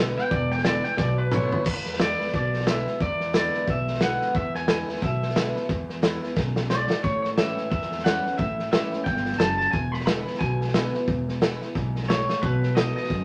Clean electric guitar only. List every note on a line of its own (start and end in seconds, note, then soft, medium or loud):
0.18 0.31 G5 loud
0.31 0.50 D5 loud
0.52 0.65 G5 loud
0.65 0.84 D5 loud
0.84 0.98 G5 loud
0.98 1.18 D5 loud
1.18 1.64 B4 loud
1.34 1.67 C#5 medium
1.67 2.01 B4 medium
2.01 2.34 D5 medium
2.35 2.69 D5 medium
2.69 3.02 E5 medium
3.02 3.36 D5 loud
3.37 3.70 D5 loud
3.70 4.02 E5 loud
4.03 4.36 F#5 loud
4.36 4.55 E5 loud
4.56 4.68 G#5 loud
4.69 5.04 G#5 loud
5.04 6.34 E5 medium
6.70 7.03 D5 medium
7.03 7.21 C#5 medium
7.22 7.27 C#5 medium
7.38 7.69 E5 loud
7.71 8.04 E5 medium
8.04 8.37 F#5 medium
8.38 8.71 E5 medium
8.72 9.04 E5 medium
9.04 9.38 G5 loud
9.39 9.57 A5 loud
9.58 9.71 A5 loud
9.71 9.92 G#5 loud
9.92 10.05 B5 loud
10.06 10.39 B5 loud
10.39 11.71 G#5 medium
12.08 12.43 C#5 medium
12.42 12.77 B4 loud
12.75 12.95 D#5 loud
12.96 13.24 D#5 loud